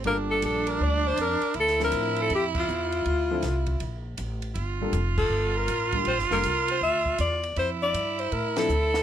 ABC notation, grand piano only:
X:1
M:4/4
L:1/8
Q:"Swing" 1/4=160
K:Dm
V:1 name="Grand piano"
[G,B,DFA]4- [G,B,DFA] z3 | z [F,CDEc]3 z4 | z [F,CDEA] z6 | z [G,B,DFA] z4 z [G,B,DFB] |
z [G,B,DFA] z6 | z4 z [F,CDEA] z2 |]